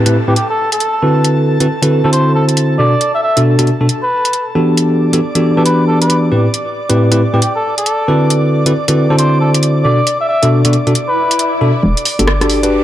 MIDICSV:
0, 0, Header, 1, 9, 480
1, 0, Start_track
1, 0, Tempo, 441176
1, 1355, Time_signature, 4, 2, 24, 8
1, 13969, End_track
2, 0, Start_track
2, 0, Title_t, "Analog synth pad"
2, 0, Program_c, 0, 89
2, 0, Note_on_c, 0, 69, 83
2, 0, Note_on_c, 0, 81, 81
2, 5193, Note_on_c, 0, 86, 78
2, 5195, Note_on_c, 0, 74, 81
2, 5208, Note_off_c, 0, 69, 0
2, 5209, Note_off_c, 0, 81, 0
2, 12858, Note_off_c, 0, 74, 0
2, 12860, Note_off_c, 0, 86, 0
2, 12871, Note_on_c, 0, 74, 82
2, 12873, Note_on_c, 0, 86, 81
2, 13969, Note_off_c, 0, 74, 0
2, 13969, Note_off_c, 0, 86, 0
2, 13969, End_track
3, 0, Start_track
3, 0, Title_t, "Muted trumpet"
3, 0, Program_c, 1, 59
3, 308, Note_on_c, 1, 67, 79
3, 364, Note_off_c, 1, 67, 0
3, 396, Note_on_c, 1, 67, 69
3, 491, Note_off_c, 1, 67, 0
3, 547, Note_on_c, 1, 69, 92
3, 755, Note_off_c, 1, 69, 0
3, 787, Note_on_c, 1, 69, 88
3, 1416, Note_off_c, 1, 69, 0
3, 2225, Note_on_c, 1, 69, 84
3, 2297, Note_off_c, 1, 69, 0
3, 2315, Note_on_c, 1, 72, 89
3, 2536, Note_off_c, 1, 72, 0
3, 2557, Note_on_c, 1, 69, 86
3, 2676, Note_off_c, 1, 69, 0
3, 3035, Note_on_c, 1, 74, 93
3, 3395, Note_off_c, 1, 74, 0
3, 3424, Note_on_c, 1, 76, 84
3, 3497, Note_off_c, 1, 76, 0
3, 3517, Note_on_c, 1, 76, 91
3, 3737, Note_off_c, 1, 76, 0
3, 4387, Note_on_c, 1, 71, 92
3, 4866, Note_off_c, 1, 71, 0
3, 6062, Note_on_c, 1, 69, 85
3, 6135, Note_off_c, 1, 69, 0
3, 6153, Note_on_c, 1, 71, 85
3, 6375, Note_off_c, 1, 71, 0
3, 6392, Note_on_c, 1, 69, 87
3, 6513, Note_off_c, 1, 69, 0
3, 6543, Note_on_c, 1, 71, 89
3, 6753, Note_off_c, 1, 71, 0
3, 7982, Note_on_c, 1, 67, 81
3, 8041, Note_off_c, 1, 67, 0
3, 8072, Note_on_c, 1, 67, 70
3, 8170, Note_off_c, 1, 67, 0
3, 8221, Note_on_c, 1, 69, 91
3, 8432, Note_off_c, 1, 69, 0
3, 8462, Note_on_c, 1, 69, 90
3, 9093, Note_off_c, 1, 69, 0
3, 9904, Note_on_c, 1, 69, 86
3, 9976, Note_off_c, 1, 69, 0
3, 9993, Note_on_c, 1, 72, 88
3, 10215, Note_off_c, 1, 72, 0
3, 10234, Note_on_c, 1, 69, 88
3, 10355, Note_off_c, 1, 69, 0
3, 10714, Note_on_c, 1, 74, 91
3, 11075, Note_off_c, 1, 74, 0
3, 11106, Note_on_c, 1, 76, 85
3, 11177, Note_off_c, 1, 76, 0
3, 11194, Note_on_c, 1, 76, 91
3, 11416, Note_off_c, 1, 76, 0
3, 12064, Note_on_c, 1, 71, 93
3, 12545, Note_off_c, 1, 71, 0
3, 13969, End_track
4, 0, Start_track
4, 0, Title_t, "Tine electric piano"
4, 0, Program_c, 2, 4
4, 65, Note_on_c, 2, 45, 86
4, 65, Note_on_c, 2, 60, 78
4, 65, Note_on_c, 2, 64, 79
4, 65, Note_on_c, 2, 67, 77
4, 65, Note_on_c, 2, 71, 97
4, 171, Note_off_c, 2, 45, 0
4, 171, Note_off_c, 2, 60, 0
4, 171, Note_off_c, 2, 64, 0
4, 172, Note_off_c, 2, 67, 0
4, 172, Note_off_c, 2, 71, 0
4, 306, Note_on_c, 2, 45, 83
4, 306, Note_on_c, 2, 60, 74
4, 306, Note_on_c, 2, 64, 77
4, 306, Note_on_c, 2, 67, 77
4, 306, Note_on_c, 2, 71, 93
4, 368, Note_off_c, 2, 45, 0
4, 368, Note_off_c, 2, 60, 0
4, 368, Note_off_c, 2, 64, 0
4, 368, Note_off_c, 2, 67, 0
4, 368, Note_off_c, 2, 71, 0
4, 1114, Note_on_c, 2, 66, 76
4, 1115, Note_on_c, 2, 50, 83
4, 1115, Note_on_c, 2, 60, 77
4, 1115, Note_on_c, 2, 64, 75
4, 1115, Note_on_c, 2, 69, 74
4, 1115, Note_on_c, 2, 71, 92
4, 1709, Note_off_c, 2, 50, 0
4, 1709, Note_off_c, 2, 60, 0
4, 1709, Note_off_c, 2, 64, 0
4, 1709, Note_off_c, 2, 66, 0
4, 1709, Note_off_c, 2, 69, 0
4, 1709, Note_off_c, 2, 71, 0
4, 1745, Note_on_c, 2, 50, 73
4, 1745, Note_on_c, 2, 60, 67
4, 1745, Note_on_c, 2, 64, 67
4, 1745, Note_on_c, 2, 66, 68
4, 1745, Note_on_c, 2, 71, 82
4, 1746, Note_on_c, 2, 69, 67
4, 1807, Note_off_c, 2, 50, 0
4, 1807, Note_off_c, 2, 60, 0
4, 1807, Note_off_c, 2, 64, 0
4, 1808, Note_off_c, 2, 66, 0
4, 1808, Note_off_c, 2, 69, 0
4, 1808, Note_off_c, 2, 71, 0
4, 1984, Note_on_c, 2, 60, 72
4, 1984, Note_on_c, 2, 69, 73
4, 1984, Note_on_c, 2, 71, 85
4, 1985, Note_on_c, 2, 50, 79
4, 1985, Note_on_c, 2, 64, 69
4, 1985, Note_on_c, 2, 66, 71
4, 2189, Note_off_c, 2, 50, 0
4, 2189, Note_off_c, 2, 60, 0
4, 2189, Note_off_c, 2, 64, 0
4, 2189, Note_off_c, 2, 66, 0
4, 2189, Note_off_c, 2, 69, 0
4, 2189, Note_off_c, 2, 71, 0
4, 2223, Note_on_c, 2, 50, 79
4, 2223, Note_on_c, 2, 60, 75
4, 2223, Note_on_c, 2, 64, 73
4, 2223, Note_on_c, 2, 66, 74
4, 2223, Note_on_c, 2, 69, 72
4, 2223, Note_on_c, 2, 72, 86
4, 3012, Note_off_c, 2, 50, 0
4, 3012, Note_off_c, 2, 64, 0
4, 3012, Note_off_c, 2, 66, 0
4, 3012, Note_off_c, 2, 69, 0
4, 3013, Note_off_c, 2, 60, 0
4, 3013, Note_off_c, 2, 72, 0
4, 3034, Note_on_c, 2, 62, 64
4, 3034, Note_on_c, 2, 66, 63
4, 3035, Note_on_c, 2, 47, 69
4, 3035, Note_on_c, 2, 69, 76
4, 3194, Note_off_c, 2, 62, 0
4, 3195, Note_off_c, 2, 47, 0
4, 3195, Note_off_c, 2, 66, 0
4, 3195, Note_off_c, 2, 69, 0
4, 3664, Note_on_c, 2, 47, 92
4, 3664, Note_on_c, 2, 62, 84
4, 3664, Note_on_c, 2, 66, 83
4, 3665, Note_on_c, 2, 69, 99
4, 3868, Note_off_c, 2, 62, 0
4, 3868, Note_off_c, 2, 66, 0
4, 3869, Note_off_c, 2, 47, 0
4, 3869, Note_off_c, 2, 69, 0
4, 3905, Note_on_c, 2, 47, 84
4, 3905, Note_on_c, 2, 62, 77
4, 3905, Note_on_c, 2, 66, 78
4, 3905, Note_on_c, 2, 69, 95
4, 4011, Note_off_c, 2, 47, 0
4, 4011, Note_off_c, 2, 62, 0
4, 4011, Note_off_c, 2, 66, 0
4, 4011, Note_off_c, 2, 69, 0
4, 4144, Note_on_c, 2, 47, 85
4, 4144, Note_on_c, 2, 62, 77
4, 4144, Note_on_c, 2, 66, 75
4, 4144, Note_on_c, 2, 69, 92
4, 4207, Note_off_c, 2, 47, 0
4, 4207, Note_off_c, 2, 62, 0
4, 4207, Note_off_c, 2, 66, 0
4, 4207, Note_off_c, 2, 69, 0
4, 4954, Note_on_c, 2, 52, 83
4, 4954, Note_on_c, 2, 59, 78
4, 4954, Note_on_c, 2, 62, 77
4, 4954, Note_on_c, 2, 66, 75
4, 4954, Note_on_c, 2, 67, 74
4, 4954, Note_on_c, 2, 69, 93
4, 5548, Note_off_c, 2, 67, 0
4, 5549, Note_off_c, 2, 52, 0
4, 5549, Note_off_c, 2, 59, 0
4, 5549, Note_off_c, 2, 62, 0
4, 5549, Note_off_c, 2, 66, 0
4, 5549, Note_off_c, 2, 69, 0
4, 5583, Note_on_c, 2, 59, 66
4, 5583, Note_on_c, 2, 62, 65
4, 5583, Note_on_c, 2, 66, 69
4, 5584, Note_on_c, 2, 52, 74
4, 5584, Note_on_c, 2, 67, 68
4, 5584, Note_on_c, 2, 69, 78
4, 5646, Note_off_c, 2, 62, 0
4, 5646, Note_off_c, 2, 66, 0
4, 5647, Note_off_c, 2, 52, 0
4, 5647, Note_off_c, 2, 59, 0
4, 5647, Note_off_c, 2, 67, 0
4, 5647, Note_off_c, 2, 69, 0
4, 5823, Note_on_c, 2, 52, 77
4, 5823, Note_on_c, 2, 59, 69
4, 5823, Note_on_c, 2, 62, 74
4, 5823, Note_on_c, 2, 66, 71
4, 5823, Note_on_c, 2, 67, 72
4, 5824, Note_on_c, 2, 69, 86
4, 6028, Note_off_c, 2, 52, 0
4, 6028, Note_off_c, 2, 59, 0
4, 6028, Note_off_c, 2, 62, 0
4, 6028, Note_off_c, 2, 66, 0
4, 6028, Note_off_c, 2, 67, 0
4, 6028, Note_off_c, 2, 69, 0
4, 6063, Note_on_c, 2, 52, 78
4, 6063, Note_on_c, 2, 59, 72
4, 6063, Note_on_c, 2, 62, 71
4, 6063, Note_on_c, 2, 66, 73
4, 6063, Note_on_c, 2, 67, 73
4, 6064, Note_on_c, 2, 71, 86
4, 6852, Note_off_c, 2, 52, 0
4, 6852, Note_off_c, 2, 59, 0
4, 6852, Note_off_c, 2, 62, 0
4, 6852, Note_off_c, 2, 66, 0
4, 6852, Note_off_c, 2, 67, 0
4, 6853, Note_off_c, 2, 71, 0
4, 6873, Note_on_c, 2, 45, 70
4, 6873, Note_on_c, 2, 64, 65
4, 6873, Note_on_c, 2, 67, 65
4, 6873, Note_on_c, 2, 71, 78
4, 6874, Note_on_c, 2, 60, 64
4, 7034, Note_off_c, 2, 45, 0
4, 7034, Note_off_c, 2, 60, 0
4, 7034, Note_off_c, 2, 64, 0
4, 7034, Note_off_c, 2, 67, 0
4, 7034, Note_off_c, 2, 71, 0
4, 7502, Note_on_c, 2, 45, 91
4, 7502, Note_on_c, 2, 64, 85
4, 7502, Note_on_c, 2, 71, 100
4, 7503, Note_on_c, 2, 60, 81
4, 7503, Note_on_c, 2, 67, 84
4, 7708, Note_off_c, 2, 45, 0
4, 7708, Note_off_c, 2, 60, 0
4, 7708, Note_off_c, 2, 64, 0
4, 7708, Note_off_c, 2, 67, 0
4, 7708, Note_off_c, 2, 71, 0
4, 7742, Note_on_c, 2, 45, 88
4, 7742, Note_on_c, 2, 64, 80
4, 7742, Note_on_c, 2, 67, 80
4, 7742, Note_on_c, 2, 71, 95
4, 7743, Note_on_c, 2, 60, 82
4, 7850, Note_off_c, 2, 45, 0
4, 7850, Note_off_c, 2, 60, 0
4, 7850, Note_off_c, 2, 64, 0
4, 7850, Note_off_c, 2, 67, 0
4, 7850, Note_off_c, 2, 71, 0
4, 7983, Note_on_c, 2, 45, 84
4, 7983, Note_on_c, 2, 60, 77
4, 7983, Note_on_c, 2, 64, 80
4, 7983, Note_on_c, 2, 67, 77
4, 7983, Note_on_c, 2, 71, 93
4, 8046, Note_off_c, 2, 45, 0
4, 8046, Note_off_c, 2, 60, 0
4, 8046, Note_off_c, 2, 64, 0
4, 8046, Note_off_c, 2, 67, 0
4, 8046, Note_off_c, 2, 71, 0
4, 8793, Note_on_c, 2, 50, 84
4, 8793, Note_on_c, 2, 60, 79
4, 8793, Note_on_c, 2, 64, 77
4, 8793, Note_on_c, 2, 66, 77
4, 8793, Note_on_c, 2, 71, 93
4, 8794, Note_on_c, 2, 69, 77
4, 9388, Note_off_c, 2, 50, 0
4, 9388, Note_off_c, 2, 60, 0
4, 9388, Note_off_c, 2, 64, 0
4, 9388, Note_off_c, 2, 66, 0
4, 9388, Note_off_c, 2, 69, 0
4, 9388, Note_off_c, 2, 71, 0
4, 9424, Note_on_c, 2, 60, 67
4, 9425, Note_on_c, 2, 50, 74
4, 9425, Note_on_c, 2, 64, 69
4, 9425, Note_on_c, 2, 66, 68
4, 9425, Note_on_c, 2, 69, 68
4, 9425, Note_on_c, 2, 71, 80
4, 9487, Note_off_c, 2, 50, 0
4, 9487, Note_off_c, 2, 60, 0
4, 9487, Note_off_c, 2, 64, 0
4, 9487, Note_off_c, 2, 66, 0
4, 9487, Note_off_c, 2, 69, 0
4, 9487, Note_off_c, 2, 71, 0
4, 9664, Note_on_c, 2, 50, 80
4, 9664, Note_on_c, 2, 69, 74
4, 9665, Note_on_c, 2, 60, 71
4, 9665, Note_on_c, 2, 64, 74
4, 9665, Note_on_c, 2, 66, 72
4, 9665, Note_on_c, 2, 71, 90
4, 9869, Note_off_c, 2, 50, 0
4, 9869, Note_off_c, 2, 60, 0
4, 9869, Note_off_c, 2, 64, 0
4, 9869, Note_off_c, 2, 66, 0
4, 9869, Note_off_c, 2, 69, 0
4, 9869, Note_off_c, 2, 71, 0
4, 9904, Note_on_c, 2, 50, 82
4, 9905, Note_on_c, 2, 60, 71
4, 9905, Note_on_c, 2, 64, 71
4, 9905, Note_on_c, 2, 66, 72
4, 9905, Note_on_c, 2, 69, 74
4, 9905, Note_on_c, 2, 72, 86
4, 10693, Note_off_c, 2, 50, 0
4, 10693, Note_off_c, 2, 60, 0
4, 10693, Note_off_c, 2, 64, 0
4, 10693, Note_off_c, 2, 66, 0
4, 10693, Note_off_c, 2, 69, 0
4, 10693, Note_off_c, 2, 72, 0
4, 10714, Note_on_c, 2, 47, 72
4, 10714, Note_on_c, 2, 62, 66
4, 10714, Note_on_c, 2, 69, 80
4, 10715, Note_on_c, 2, 66, 67
4, 10874, Note_off_c, 2, 62, 0
4, 10875, Note_off_c, 2, 47, 0
4, 10875, Note_off_c, 2, 66, 0
4, 10875, Note_off_c, 2, 69, 0
4, 11344, Note_on_c, 2, 47, 93
4, 11344, Note_on_c, 2, 62, 81
4, 11344, Note_on_c, 2, 69, 101
4, 11345, Note_on_c, 2, 66, 87
4, 11549, Note_off_c, 2, 47, 0
4, 11549, Note_off_c, 2, 62, 0
4, 11549, Note_off_c, 2, 66, 0
4, 11549, Note_off_c, 2, 69, 0
4, 11586, Note_on_c, 2, 47, 88
4, 11586, Note_on_c, 2, 62, 80
4, 11586, Note_on_c, 2, 66, 79
4, 11586, Note_on_c, 2, 69, 95
4, 11692, Note_off_c, 2, 47, 0
4, 11692, Note_off_c, 2, 62, 0
4, 11692, Note_off_c, 2, 66, 0
4, 11692, Note_off_c, 2, 69, 0
4, 11825, Note_on_c, 2, 47, 85
4, 11825, Note_on_c, 2, 62, 79
4, 11825, Note_on_c, 2, 66, 76
4, 11825, Note_on_c, 2, 69, 91
4, 11887, Note_off_c, 2, 66, 0
4, 11887, Note_off_c, 2, 69, 0
4, 11888, Note_off_c, 2, 47, 0
4, 11888, Note_off_c, 2, 62, 0
4, 12634, Note_on_c, 2, 47, 81
4, 12634, Note_on_c, 2, 62, 72
4, 12634, Note_on_c, 2, 66, 72
4, 12634, Note_on_c, 2, 69, 87
4, 12739, Note_off_c, 2, 47, 0
4, 12739, Note_off_c, 2, 62, 0
4, 12739, Note_off_c, 2, 66, 0
4, 12739, Note_off_c, 2, 69, 0
4, 13263, Note_on_c, 2, 67, 68
4, 13264, Note_on_c, 2, 62, 74
4, 13264, Note_on_c, 2, 66, 68
4, 13264, Note_on_c, 2, 69, 82
4, 13326, Note_off_c, 2, 67, 0
4, 13327, Note_off_c, 2, 62, 0
4, 13327, Note_off_c, 2, 66, 0
4, 13327, Note_off_c, 2, 69, 0
4, 13504, Note_on_c, 2, 62, 82
4, 13504, Note_on_c, 2, 66, 73
4, 13504, Note_on_c, 2, 67, 74
4, 13504, Note_on_c, 2, 69, 87
4, 13708, Note_off_c, 2, 62, 0
4, 13708, Note_off_c, 2, 66, 0
4, 13708, Note_off_c, 2, 67, 0
4, 13708, Note_off_c, 2, 69, 0
4, 13743, Note_on_c, 2, 66, 72
4, 13743, Note_on_c, 2, 67, 76
4, 13744, Note_on_c, 2, 62, 78
4, 13744, Note_on_c, 2, 71, 91
4, 13969, Note_off_c, 2, 62, 0
4, 13969, Note_off_c, 2, 66, 0
4, 13969, Note_off_c, 2, 67, 0
4, 13969, Note_off_c, 2, 71, 0
4, 13969, End_track
5, 0, Start_track
5, 0, Title_t, "FM bass"
5, 0, Program_c, 3, 39
5, 12874, Note_on_c, 3, 28, 101
5, 12992, Note_off_c, 3, 28, 0
5, 13265, Note_on_c, 3, 31, 84
5, 13933, Note_off_c, 3, 31, 0
5, 13969, End_track
6, 0, Start_track
6, 0, Title_t, "Downlifter"
6, 0, Program_c, 4, 103
6, 0, Note_on_c, 4, 60, 72
6, 1355, Note_off_c, 4, 60, 0
6, 13969, End_track
7, 0, Start_track
7, 0, Title_t, "Riser"
7, 0, Program_c, 5, 103
7, 12874, Note_on_c, 5, 60, 80
7, 13969, Note_off_c, 5, 60, 0
7, 13969, End_track
8, 0, Start_track
8, 0, Title_t, "Swell"
8, 0, Program_c, 6, 103
8, 11915, Note_on_c, 6, 60, 71
8, 12875, Note_off_c, 6, 60, 0
8, 13969, End_track
9, 0, Start_track
9, 0, Title_t, "Drums"
9, 65, Note_on_c, 9, 42, 63
9, 174, Note_off_c, 9, 42, 0
9, 395, Note_on_c, 9, 42, 59
9, 504, Note_off_c, 9, 42, 0
9, 785, Note_on_c, 9, 42, 59
9, 875, Note_off_c, 9, 42, 0
9, 875, Note_on_c, 9, 42, 60
9, 983, Note_off_c, 9, 42, 0
9, 1354, Note_on_c, 9, 42, 62
9, 1463, Note_off_c, 9, 42, 0
9, 1745, Note_on_c, 9, 42, 62
9, 1854, Note_off_c, 9, 42, 0
9, 1986, Note_on_c, 9, 42, 62
9, 2095, Note_off_c, 9, 42, 0
9, 2315, Note_on_c, 9, 42, 62
9, 2424, Note_off_c, 9, 42, 0
9, 2705, Note_on_c, 9, 42, 59
9, 2796, Note_off_c, 9, 42, 0
9, 2796, Note_on_c, 9, 42, 61
9, 2904, Note_off_c, 9, 42, 0
9, 3274, Note_on_c, 9, 42, 64
9, 3383, Note_off_c, 9, 42, 0
9, 3664, Note_on_c, 9, 42, 60
9, 3773, Note_off_c, 9, 42, 0
9, 3904, Note_on_c, 9, 42, 61
9, 3994, Note_off_c, 9, 42, 0
9, 3994, Note_on_c, 9, 42, 33
9, 4103, Note_off_c, 9, 42, 0
9, 4233, Note_on_c, 9, 42, 63
9, 4342, Note_off_c, 9, 42, 0
9, 4624, Note_on_c, 9, 42, 61
9, 4714, Note_off_c, 9, 42, 0
9, 4714, Note_on_c, 9, 42, 60
9, 4823, Note_off_c, 9, 42, 0
9, 5195, Note_on_c, 9, 42, 66
9, 5303, Note_off_c, 9, 42, 0
9, 5584, Note_on_c, 9, 42, 63
9, 5693, Note_off_c, 9, 42, 0
9, 5824, Note_on_c, 9, 42, 64
9, 5932, Note_off_c, 9, 42, 0
9, 6154, Note_on_c, 9, 42, 66
9, 6262, Note_off_c, 9, 42, 0
9, 6545, Note_on_c, 9, 42, 62
9, 6634, Note_off_c, 9, 42, 0
9, 6634, Note_on_c, 9, 42, 63
9, 6743, Note_off_c, 9, 42, 0
9, 7114, Note_on_c, 9, 42, 68
9, 7222, Note_off_c, 9, 42, 0
9, 7503, Note_on_c, 9, 42, 66
9, 7611, Note_off_c, 9, 42, 0
9, 7743, Note_on_c, 9, 42, 65
9, 7851, Note_off_c, 9, 42, 0
9, 8073, Note_on_c, 9, 42, 67
9, 8181, Note_off_c, 9, 42, 0
9, 8463, Note_on_c, 9, 42, 65
9, 8553, Note_off_c, 9, 42, 0
9, 8553, Note_on_c, 9, 42, 65
9, 8662, Note_off_c, 9, 42, 0
9, 9034, Note_on_c, 9, 42, 70
9, 9143, Note_off_c, 9, 42, 0
9, 9423, Note_on_c, 9, 42, 70
9, 9532, Note_off_c, 9, 42, 0
9, 9663, Note_on_c, 9, 42, 68
9, 9772, Note_off_c, 9, 42, 0
9, 9994, Note_on_c, 9, 42, 66
9, 10102, Note_off_c, 9, 42, 0
9, 10385, Note_on_c, 9, 42, 67
9, 10475, Note_off_c, 9, 42, 0
9, 10475, Note_on_c, 9, 42, 65
9, 10584, Note_off_c, 9, 42, 0
9, 10954, Note_on_c, 9, 42, 67
9, 11063, Note_off_c, 9, 42, 0
9, 11344, Note_on_c, 9, 42, 64
9, 11453, Note_off_c, 9, 42, 0
9, 11584, Note_on_c, 9, 42, 69
9, 11675, Note_off_c, 9, 42, 0
9, 11675, Note_on_c, 9, 42, 35
9, 11784, Note_off_c, 9, 42, 0
9, 11825, Note_on_c, 9, 42, 36
9, 11915, Note_off_c, 9, 42, 0
9, 11915, Note_on_c, 9, 42, 67
9, 12024, Note_off_c, 9, 42, 0
9, 12305, Note_on_c, 9, 42, 65
9, 12395, Note_off_c, 9, 42, 0
9, 12395, Note_on_c, 9, 42, 67
9, 12503, Note_off_c, 9, 42, 0
9, 13026, Note_on_c, 9, 42, 53
9, 13115, Note_on_c, 9, 46, 107
9, 13135, Note_off_c, 9, 42, 0
9, 13224, Note_off_c, 9, 46, 0
9, 13266, Note_on_c, 9, 42, 63
9, 13354, Note_on_c, 9, 37, 116
9, 13374, Note_off_c, 9, 42, 0
9, 13463, Note_off_c, 9, 37, 0
9, 13506, Note_on_c, 9, 37, 67
9, 13506, Note_on_c, 9, 42, 54
9, 13595, Note_on_c, 9, 46, 91
9, 13615, Note_off_c, 9, 37, 0
9, 13615, Note_off_c, 9, 42, 0
9, 13704, Note_off_c, 9, 46, 0
9, 13746, Note_on_c, 9, 42, 62
9, 13854, Note_off_c, 9, 42, 0
9, 13969, End_track
0, 0, End_of_file